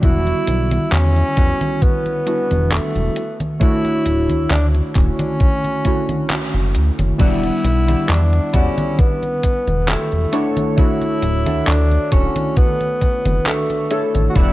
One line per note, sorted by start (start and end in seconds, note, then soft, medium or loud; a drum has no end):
0.01 0.34 E1 loud
0.01 1.32 D3 medium
0.01 1.32 G3 loud
0.01 1.32 B3 medium
0.01 1.33 E4 medium
0.01 0.89 E4 loud
0.01 1.33 F#4 loud
0.01 kick loud
0.01 closed hi-hat soft
0.01 high conga soft
0.27 closed hi-hat soft
0.27 high conga soft
0.47 0.79 B1 medium
0.47 closed hi-hat medium
0.71 closed hi-hat soft
0.71 high conga medium
0.92 1.23 E2 loud
0.92 1.84 C#4 loud
0.92 clap loud
0.92 closed hi-hat soft
0.92 high conga soft
1.16 closed hi-hat soft
1.16 high conga soft
1.36 1.53 E1 medium
1.36 2.22 D3 medium
1.36 2.22 G3 medium
1.36 2.22 B3 medium
1.36 2.22 E4 medium
1.36 2.22 F#4 medium
1.36 kick loud
1.36 closed hi-hat medium
1.61 closed hi-hat soft
1.61 high conga medium
1.82 2.73 B3 loud
1.82 kick loud
1.82 closed hi-hat soft
1.82 high conga soft
2.06 closed hi-hat soft
2.06 high conga soft
2.26 3.14 G3 medium
2.26 3.14 B3 medium
2.26 3.14 D4 medium
2.26 3.14 E4 medium
2.26 3.14 F#4 medium
2.26 closed hi-hat medium
2.51 2.80 E1 loud
2.51 closed hi-hat soft
2.51 high conga medium
2.71 3.41 A3 loud
2.71 clap loud
2.71 closed hi-hat soft
2.71 high conga soft
2.95 3.10 E1 medium
2.95 closed hi-hat soft
2.95 high conga soft
3.16 closed hi-hat medium
3.40 closed hi-hat soft
3.40 high conga medium
3.60 4.90 A3 loud
3.60 4.91 D4 medium
3.60 4.91 E4 medium
3.60 4.47 E4 loud
3.60 4.91 F#4 loud
3.60 4.90 C#5 medium
3.60 kick loud
3.60 closed hi-hat medium
3.60 high conga soft
3.85 closed hi-hat soft
3.85 high conga soft
4.06 4.29 D1 medium
4.06 closed hi-hat medium
4.30 4.47 D2 soft
4.30 closed hi-hat medium
4.30 high conga medium
4.51 4.82 D2 loud
4.51 4.67 D4 medium
4.51 clap loud
4.51 closed hi-hat medium
4.51 high conga soft
4.75 closed hi-hat soft
4.75 high conga soft
4.95 5.12 D1 medium
4.95 5.80 D3 medium
4.95 5.80 A3 medium
4.95 5.80 C#4 medium
4.95 6.71 C#4 loud
4.95 5.80 E4 medium
4.95 5.81 F#4 medium
4.95 kick loud
4.95 clap soft
4.95 closed hi-hat medium
5.19 closed hi-hat medium
5.19 high conga medium
5.40 kick loud
5.40 closed hi-hat medium
5.40 high conga soft
5.64 closed hi-hat soft
5.64 high conga soft
5.84 7.15 D3 medium
5.84 7.14 A3 medium
5.84 7.14 C#4 medium
5.84 7.15 E4 medium
5.84 7.15 F#4 medium
5.84 kick medium
5.84 closed hi-hat medium
6.09 closed hi-hat soft
6.09 high conga medium
6.30 clap loud
6.30 closed hi-hat medium
6.30 high conga soft
6.54 6.76 F#1 loud
6.54 closed hi-hat soft
6.54 high conga soft
6.75 6.91 D2 loud
6.75 closed hi-hat medium
6.99 7.13 F#1 medium
6.99 closed hi-hat medium
6.99 high conga medium
7.18 7.51 E1 medium
7.18 8.48 G3 loud
7.18 8.49 B3 medium
7.18 8.49 D4 medium
7.18 7.43 E4 loud
7.18 8.12 E4 loud
7.18 8.49 E4 medium
7.18 7.43 F#4 loud
7.18 7.44 G4 medium
7.18 7.44 D5 loud
7.18 8.50 F#5 loud
7.18 kick loud
7.18 closed hi-hat medium
7.18 crash loud
7.18 high conga soft
7.43 closed hi-hat soft
7.43 high conga soft
7.64 7.95 B1 medium
7.64 muted clean electric guitar stroke soft
7.64 closed hi-hat loud
7.88 8.21 E4 medium
7.88 8.21 F#4 medium
7.88 8.21 G4 medium
7.88 8.21 D5 medium
7.88 closed hi-hat medium
7.88 high conga medium
8.09 8.40 E2 loud
8.09 8.56 D4 loud
8.09 clap loud
8.09 closed hi-hat medium
8.09 high conga soft
8.33 closed hi-hat soft
8.33 high conga soft
8.53 8.70 E1 medium
8.53 9.39 D3 medium
8.53 9.38 G3 medium
8.53 9.38 B3 medium
8.53 9.01 C#4 medium
8.53 9.22 E4 medium
8.53 9.39 E4 medium
8.53 9.23 F#4 medium
8.53 9.23 G4 medium
8.53 9.23 D5 loud
8.53 9.39 F#5 medium
8.53 kick loud
8.53 closed hi-hat loud
8.78 closed hi-hat medium
8.78 high conga medium
8.99 9.91 B3 loud
8.99 kick loud
8.99 closed hi-hat medium
8.99 high conga soft
9.23 closed hi-hat soft
9.23 high conga soft
9.43 kick medium
9.43 closed hi-hat loud
9.67 9.96 E1 medium
9.67 closed hi-hat soft
9.67 high conga medium
9.87 10.58 A3 medium
9.87 10.32 E4 medium
9.87 10.31 F#4 medium
9.87 10.32 G4 medium
9.87 10.32 C#5 loud
9.87 clap loud
9.87 closed hi-hat medium
9.87 high conga soft
10.12 10.26 E1 medium
10.12 closed hi-hat soft
10.12 high conga soft
10.32 10.73 A3 loud
10.32 11.06 D4 medium
10.32 10.73 D4 medium
10.32 10.73 E4 medium
10.32 11.06 F#4 medium
10.32 11.06 A4 medium
10.32 10.73 A4 loud
10.32 11.06 C#5 loud
10.32 10.73 C#5 loud
10.32 closed hi-hat loud
10.57 closed hi-hat medium
10.57 high conga medium
10.76 12.06 A3 medium
10.76 12.07 D4 medium
10.76 11.69 E4 loud
10.76 12.07 E4 medium
10.76 12.08 F#4 loud
10.76 12.07 C#5 medium
10.76 kick loud
10.76 closed hi-hat medium
10.76 high conga soft
11.01 closed hi-hat soft
11.01 high conga soft
11.22 11.46 D1 medium
11.22 muted clean electric guitar stroke soft
11.22 closed hi-hat medium
11.46 11.63 D2 soft
11.46 11.79 D4 medium
11.46 11.79 F#4 medium
11.46 11.79 A4 medium
11.46 11.79 E5 loud
11.46 closed hi-hat medium
11.46 high conga medium
11.67 11.98 D2 loud
11.67 12.14 D4 loud
11.67 clap loud
11.67 closed hi-hat medium
11.67 high conga soft
11.91 closed hi-hat soft
11.91 high conga soft
12.11 12.28 D1 medium
12.11 12.97 D3 medium
12.11 12.96 A3 medium
12.11 12.57 C#4 medium
12.11 12.81 D4 medium
12.11 12.97 E4 medium
12.11 12.81 F#4 medium
12.11 12.97 F#4 medium
12.11 12.81 A4 medium
12.11 12.96 C#5 medium
12.11 12.81 C#5 loud
12.11 kick loud
12.11 closed hi-hat loud
12.36 closed hi-hat medium
12.36 high conga medium
12.57 13.43 B3 loud
12.57 kick loud
12.57 closed hi-hat medium
12.57 high conga soft
12.81 closed hi-hat soft
12.81 high conga soft
13.01 kick medium
13.01 closed hi-hat medium
13.26 13.39 F#1 medium
13.26 closed hi-hat medium
13.26 high conga medium
13.46 14.11 A3 loud
13.46 13.91 D4 medium
13.46 13.91 F#4 medium
13.46 13.91 A4 medium
13.46 13.91 C#5 loud
13.46 clap loud
13.46 closed hi-hat medium
13.46 high conga soft
13.70 closed hi-hat soft
13.70 high conga soft
13.91 14.31 A3 loud
13.91 14.31 D4 medium
13.91 14.31 E4 loud
13.91 14.31 A4 loud
13.91 14.31 C#5 medium
13.91 closed hi-hat loud
14.15 14.29 A1 medium
14.15 closed hi-hat medium
14.15 high conga medium
14.30 14.38 F#4 medium
14.34 14.53 E1 loud
14.34 14.53 G3 loud
14.34 14.53 B3 medium
14.34 14.53 D4 medium
14.34 14.53 E4 loud
14.34 14.53 E4 medium
14.34 14.53 F#4 loud
14.34 14.53 G4 loud
14.34 14.53 D5 loud
14.34 14.53 F#5 loud
14.34 kick loud
14.34 closed hi-hat medium
14.34 high conga soft